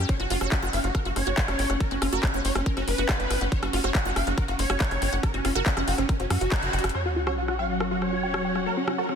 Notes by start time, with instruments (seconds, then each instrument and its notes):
Already playing: synth texture C#4
0.09 digital synth lead C#5, kick, cross-stick, closed hi-hat
0.20 analog synth bass F#1, digital synth lead F#4, synth arpeggio sound F#4, closed hi-hat
0.30 analog synth bass F#1, synth arpeggio sound F4, digital synth lead F#4, open hi-hat
0.41 analog synth bass F#1, synth arpeggio sound F#4, digital synth lead C#5, cross-stick, closed hi-hat
0.52 digital synth lead F#4, kick, clap, closed hi-hat
0.63 analog synth bass F#1, digital synth lead F#4, synth arpeggio sound F#5, cross-stick, closed hi-hat
0.73 analog synth bass F#1, digital synth lead F5, synth arpeggio sound G5, open hi-hat
0.84 analog synth bass F#1, digital synth lead F#4, closed hi-hat
0.95 digital synth lead F#4, synth arpeggio sound A#4, kick, cross-stick, closed hi-hat
1.05 analog synth bass F#1, synth arpeggio sound F#4, digital synth lead F#4, closed hi-hat
1.16 analog synth bass F#1, digital synth lead C#5, cross-stick, open hi-hat
1.27 analog synth bass F#1, synth arpeggio sound F#4, closed hi-hat
1.38 synth arpeggio sound G5, kick, clap, closed hi-hat
1.48 analog synth bass F#1, cross-stick, closed hi-hat
1.59 analog synth bass G1, synth arpeggio sound G5, open hi-hat
1.70 analog synth bass F#1, synth arpeggio sound F#5, cross-stick, closed hi-hat
1.80 digital synth lead A#4, kick, closed hi-hat
1.91 analog synth bass F#1, digital synth lead C#4, synth arpeggio sound F#4, closed hi-hat
2.02 analog synth bass F#1, digital synth lead C#4, synth arpeggio sound F4, cross-stick, open hi-hat
2.13 analog synth bass F#1, synth arpeggio sound F#4, digital synth lead A#4, closed hi-hat
2.23 digital synth lead C#4, kick, cross-stick, clap, closed hi-hat
2.34 analog synth bass F#1, digital synth lead C#4, synth arpeggio sound F#5, closed hi-hat
2.45 analog synth bass F#1, digital synth lead C#5, synth arpeggio sound G5, open hi-hat
2.55 analog synth bass F#1, digital synth lead C#4, cross-stick, closed hi-hat
2.66 digital synth lead C#4, synth arpeggio sound A#4, kick, closed hi-hat
2.77 analog synth bass F#1, digital synth lead C#4, synth arpeggio sound F#4, cross-stick, closed hi-hat
2.88 analog synth bass F#1, digital synth lead B4, open hi-hat
2.98 analog synth bass F#1, synth arpeggio sound F#4, closed hi-hat
3.09 synth arpeggio sound G5, kick, cross-stick, clap, closed hi-hat
3.20 analog synth bass F#1, closed hi-hat
3.30 analog synth bass G1, synth arpeggio sound G5, cross-stick, open hi-hat
3.41 analog synth bass F#1, synth arpeggio sound F#5, closed hi-hat
3.52 digital synth lead C#5, kick, closed hi-hat
3.63 analog synth bass F#1, synth arpeggio sound F#4, digital synth lead F#4, cross-stick, closed hi-hat
3.73 analog synth bass F#1, synth arpeggio sound F4, digital synth lead F#4, open hi-hat
3.84 analog synth bass F#1, synth arpeggio sound F#4, digital synth lead C#5, cross-stick, closed hi-hat
3.95 digital synth lead F#4, kick, clap, closed hi-hat
4.05 analog synth bass F#1, digital synth lead F#4, synth arpeggio sound F#5, closed hi-hat
4.16 analog synth bass F#1, digital synth lead F5, synth arpeggio sound G5, cross-stick, open hi-hat
4.27 analog synth bass F#1, digital synth lead F#4, closed hi-hat
4.38 digital synth lead F#4, synth arpeggio sound A#4, kick, cross-stick, closed hi-hat
4.48 analog synth bass F#1, digital synth lead F#4, synth arpeggio sound F#4, closed hi-hat
4.59 analog synth bass F#1, digital synth lead C#5, open hi-hat
4.70 analog synth bass F#1, synth arpeggio sound F#4, cross-stick, closed hi-hat
4.80 synth arpeggio sound G5, kick, clap, closed hi-hat
4.91 analog synth bass F#1, cross-stick, closed hi-hat
5.02 analog synth bass G1, synth arpeggio sound G5, open hi-hat
5.13 analog synth bass F#1, synth arpeggio sound F#5, closed hi-hat
5.23 digital synth lead A#4, kick, cross-stick, closed hi-hat
5.34 analog synth bass F#1, digital synth lead C#4, synth arpeggio sound F#4, closed hi-hat
5.45 analog synth bass F#1, digital synth lead C#4, synth arpeggio sound F4, cross-stick, open hi-hat
5.55 analog synth bass F#1, synth arpeggio sound F#4, digital synth lead A#4, closed hi-hat
5.66 digital synth lead C#4, kick, clap, closed hi-hat
5.77 analog synth bass F#1, digital synth lead C#4, synth arpeggio sound F#5, cross-stick, closed hi-hat
5.88 analog synth bass F#1, digital synth lead F#4, synth arpeggio sound G5, open hi-hat
5.98 analog synth bass F#1, digital synth lead C#4, cross-stick, closed hi-hat
6.09 digital synth lead C#4, synth arpeggio sound A#4, kick, closed hi-hat
6.20 analog synth bass F#1, digital synth lead C#4, synth arpeggio sound F#4, closed hi-hat
6.30 analog synth bass F#2, digital synth lead F#4, cross-stick, open hi-hat
6.41 analog synth bass F#1, synth arpeggio sound F#4, closed hi-hat
6.52 synth arpeggio sound G5, kick, cross-stick, clap, closed hi-hat
6.63 analog synth bass F#1, closed hi-hat
6.73 analog synth bass F#1, synth arpeggio sound G5, closed hi-hat
6.79 closed hi-hat
6.84 analog synth bass F#1, synth arpeggio sound F#5, cross-stick, closed hi-hat
6.89 closed hi-hat
6.95 synth texture F#3 F#4, string section C#4, digital synth lead C#5, cross-stick, sub drop
7.05 digital synth lead F#4, synth arpeggio sound F#4, string section F#4 C#5
7.16 synth arpeggio sound F4, digital synth lead F#4
7.27 synth arpeggio sound F#4, digital synth lead C#5, cross-stick
7.33 string section F#5
7.38 digital synth lead F#4
7.48 digital synth lead F#4, synth arpeggio sound F#5, cross-stick
7.59 digital synth lead F5, synth arpeggio sound G5
7.70 digital synth lead F#4
7.80 digital synth lead F#4, synth arpeggio sound A#4, cross-stick
7.91 digital synth lead F#4, synth arpeggio sound F#4
8.02 digital synth lead C#5, cross-stick
8.13 synth arpeggio sound F#4
8.23 synth arpeggio sound G5
8.34 cross-stick
8.45 synth arpeggio sound G5
8.55 synth arpeggio sound F#5, cross-stick
8.66 digital synth lead A#4
8.77 digital synth lead C#4, synth arpeggio sound F#4
8.88 digital synth lead C#4, synth arpeggio sound F4, cross-stick
8.98 synth arpeggio sound F#4, digital synth lead A#4
9.09 digital synth lead C#4, cross-stick